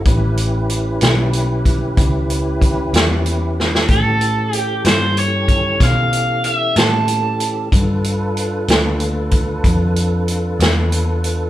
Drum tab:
HH |x-x-x-x-x-x-x-x-x-x-x---|x-x-x-x-x-x-x-x-x-x-x-x-|x-x-x-x-x-x-x-x-x-x-x-x-|
SD |------o-----------o---oo|------o-----o-----o-----|------o-----------o-----|
BD |o---------o-o---o-------|o---------o-o-----------|o---------o-o-----------|